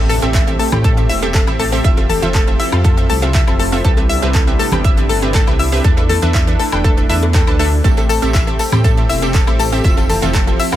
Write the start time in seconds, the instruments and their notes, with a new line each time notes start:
Already playing: detuned saw bass A1, supersaw synth A3 C4 G4, synth pluck C4 G4 A4 E5, impact
0.09 synth arpeggio sound A4, open hi-hat
0.22 detuned saw bass A1, synth pluck C4 G4 A4 E5, closed hi-hat
0.34 synth arpeggio sound E5, kick, clap, closed hi-hat
0.47 synth pluck C4 G4 A4 E5, closed hi-hat
0.59 synth arpeggio sound A4, open hi-hat
0.72 detuned saw bass A2, synth pluck C4 G4 A4 G5, closed hi-hat, high conga, high woodblock
0.84 synth pluck C4 G4 A4 E5, synth arpeggio sound A4, kick, closed hi-hat
0.97 synth pluck C4 G4 A4 E5, closed hi-hat
1.09 detuned saw bass E1, synth arpeggio sound E5, open hi-hat
1.22 synth pluck C4 G4 A4 E5, closed hi-hat
1.34 synth arpeggio sound A4, kick, clap, closed hi-hat
1.47 detuned saw bass A1, synth pluck C4 G4 A4 E5, closed hi-hat, high woodblock
1.59 synth arpeggio sound A4, open hi-hat
1.72 synth pluck C4 G4 A4 E5
1.84 detuned saw bass F1, supersaw synth F3 E4 A4, synth pluck C4 F4 A4 E5, synth arpeggio sound E5, kick, closed hi-hat
1.97 synth pluck C4 F4 A4 E5, closed hi-hat, cowbell
2.09 synth arpeggio sound A4, open hi-hat, high conga
2.22 detuned saw bass F1, synth pluck C4 F4 A4 E5, closed hi-hat, high conga
2.34 synth arpeggio sound A4, kick, clap, closed hi-hat
2.47 synth pluck C4 F4 A4 E5, closed hi-hat
2.60 synth arpeggio sound E5, open hi-hat
2.72 detuned saw bass F2, synth pluck C4 F4 A4 F5, closed hi-hat, high woodblock
2.84 synth pluck C4 F4 A4 E5, synth arpeggio sound A4, kick, closed hi-hat
2.97 synth pluck C4 F4 A4 E5, closed hi-hat
3.10 detuned saw bass C2, synth arpeggio sound A4, open hi-hat
3.22 synth pluck C4 F4 A4 E5, closed hi-hat, cowbell
3.34 synth arpeggio sound E5, kick, clap, closed hi-hat
3.47 detuned saw bass F1, synth pluck C4 F4 A4 E5, closed hi-hat, high woodblock
3.59 synth arpeggio sound A4, open hi-hat
3.72 synth pluck C4 F4 A4 E5
3.84 detuned saw bass C2, supersaw synth C3 G3 B3 D4, synth pluck C4 G4 B4 E5, synth arpeggio sound A4, kick, closed hi-hat
3.97 synth pluck C4 G4 B4 E5, closed hi-hat, cowbell
4.09 synth arpeggio sound E5, open hi-hat
4.22 detuned saw bass C2, synth pluck C4 G4 B4 E5, closed hi-hat
4.34 synth arpeggio sound A4, kick, clap, closed hi-hat
4.47 synth pluck C4 G4 B4 E5, closed hi-hat
4.59 synth arpeggio sound A4, open hi-hat
4.72 detuned saw bass G1, synth pluck C4 G4 B4 G5, high conga, high woodblock
4.84 synth pluck C4 G4 B4 E5, synth arpeggio sound E5, kick, closed hi-hat
4.97 synth pluck C4 G4 B4 E5, closed hi-hat
5.09 detuned saw bass G1, synth arpeggio sound A4, open hi-hat
5.22 synth pluck C4 G4 B4 E5, closed hi-hat
5.34 synth arpeggio sound A4, kick, clap, closed hi-hat
5.47 detuned saw bass C2, synth pluck C4 G4 B4 E5, closed hi-hat, high woodblock
5.59 synth arpeggio sound E5, open hi-hat
5.72 synth pluck C4 G4 B4 E5
5.84 detuned saw bass E2, supersaw synth A3 D4, synth pluck D4 A4 B4 E5, synth arpeggio sound A4, kick, closed hi-hat
5.97 synth pluck D4 A4 B4 E5, closed hi-hat, cowbell
6.09 synth arpeggio sound A4, open hi-hat, high conga
6.22 detuned saw bass E2, synth pluck D4 A4 B4 E5, closed hi-hat, high conga
6.34 synth arpeggio sound E5, kick, clap, closed hi-hat
6.47 synth pluck D4 A4 B4 E5, closed hi-hat
6.59 synth arpeggio sound A4, open hi-hat
6.72 detuned saw bass E1, synth pluck D4 A4 B4 G5, closed hi-hat, high woodblock
6.84 synth pluck D4 A4 B4 E5, synth arpeggio sound A4, kick, closed hi-hat
6.97 synth pluck D4 A4 B4 E5, closed hi-hat
7.09 detuned saw bass E2, synth pluck D4 A4 B4 E5, synth arpeggio sound E5, open hi-hat
7.22 closed hi-hat, cowbell
7.34 synth pluck D4 A4 B4 G5, synth arpeggio sound A4, kick, clap, closed hi-hat
7.47 detuned saw bass D2, synth pluck D4 A4 B4 A5, closed hi-hat, high woodblock
7.59 synth pluck D4 A4 B4 E5, synth arpeggio sound A4, open hi-hat
7.84 detuned saw bass A1, synth pluck C4 G4 A4 E5, supersaw synth C4 G4, synth arpeggio sound A4, kick, closed hi-hat, tambourine
7.97 synth pluck C4 G4 A4 E5, closed hi-hat, tambourine, cowbell
8.09 synth arpeggio sound A4, open hi-hat, tambourine
8.22 detuned saw bass A1, synth pluck C4 G4 A4 E5, closed hi-hat, tambourine
8.34 synth arpeggio sound E5, kick, clap, closed hi-hat, tambourine
8.47 synth pluck C4 G4 A4 E5, closed hi-hat
8.59 synth arpeggio sound A4, open hi-hat, tambourine
8.72 detuned saw bass A2, synth pluck C4 G4 A4 G5, closed hi-hat, tambourine, high conga, high woodblock
8.84 synth pluck C4 G4 A4 E5, synth arpeggio sound A4, kick, closed hi-hat, tambourine
8.97 synth pluck C4 G4 A4 E5, closed hi-hat
9.09 detuned saw bass E1, synth arpeggio sound E5, open hi-hat, tambourine
9.22 synth pluck C4 G4 A4 E5, closed hi-hat, tambourine
9.34 synth arpeggio sound A4, kick, clap, closed hi-hat, tambourine
9.47 detuned saw bass A1, synth pluck C4 G4 A4 E5, closed hi-hat, high woodblock
9.59 synth arpeggio sound A4, open hi-hat, tambourine
9.72 synth pluck C4 G4 A4 E5
9.84 detuned saw bass F1, supersaw synth F3 E4 A4, synth pluck C4 F4 A4 E5, synth arpeggio sound E5, kick, closed hi-hat, tambourine
9.97 synth pluck C4 F4 A4 E5, closed hi-hat, tambourine, cowbell
10.09 synth arpeggio sound A4, open hi-hat, tambourine, high conga
10.22 detuned saw bass F1, synth pluck C4 F4 A4 E5, closed hi-hat, tambourine, high conga
10.34 synth arpeggio sound A4, kick, clap, closed hi-hat, tambourine
10.47 synth pluck C4 F4 A4 E5, closed hi-hat
10.59 synth arpeggio sound E5, open hi-hat, tambourine
10.72 detuned saw bass F2, synth pluck C4 F4 A4 F5, closed hi-hat, tambourine, high woodblock